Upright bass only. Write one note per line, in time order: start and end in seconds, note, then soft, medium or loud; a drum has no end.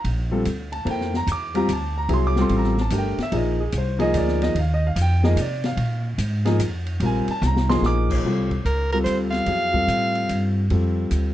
0.04 0.44 A#1 medium
0.45 0.85 D2 medium
0.85 1.26 F2 medium
1.27 1.67 E2 medium
1.68 2.08 D2 medium
2.09 2.49 C2 medium
2.50 2.90 A1 medium
2.91 3.16 G1 medium
3.18 muted upright bass stroke soft
3.32 3.72 A#1 medium
3.73 4.13 C2 medium
4.14 4.54 D2 medium
4.55 4.95 D#2 medium
4.96 5.35 F2 loud
5.36 5.76 C3 medium
5.77 6.17 A#2 loud
6.18 6.58 G#2 loud
6.59 6.99 F2 medium
7.00 7.26 A#1 medium
7.27 muted upright bass stroke soft
7.42 7.81 C2 loud
7.82 8.22 A#1 medium
8.25 8.64 C2 medium
8.65 9.05 C#2 medium
9.06 9.46 D2 medium
9.46 9.87 F2 medium
9.88 10.28 A2 medium
10.29 10.69 G2 medium
10.70 11.10 F2 medium
11.11 11.34 D2 medium